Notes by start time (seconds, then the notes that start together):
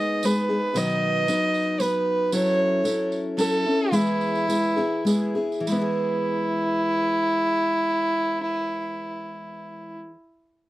Already playing: G#3 B3 D#4 G#4 D#5
0.23 G#3 B3 D#4 G#4 B4, tambourine
0.49 G#3 B3 D#4 G#4
0.74 B2 D#3 F#3 B3 D#4 B4 D#5, tambourine
0.90 tambourine
1.27 F#3 B3 D#4 B4, tambourine
1.54 tambourine
1.79 F#3 B3 D#4 B4, tambourine
2.32 F#3 C#4 E4 A4 C#5, tambourine
2.46 tambourine
2.84 F#3 C#4 E4 A4, tambourine
3.12 tambourine
3.37 F#3 C#4 E4 A4, tambourine
3.65 C#4 E4 A4
3.92 E3 G#3 B3 E4 G#4, tambourine
4.07 tambourine
4.21 tambourine
4.35 tambourine
4.47 G#3 B3 E4 G#4, tambourine
4.64 tambourine
4.76 B3 E4 G#4, tambourine
5.05 G#3 B3 E4 G#4, tambourine
5.35 B3 E4 G#4
5.52 tambourine
5.60 E3
5.67 G#3 E4, tambourine
5.72 B3
5.77 E4
5.81 G#4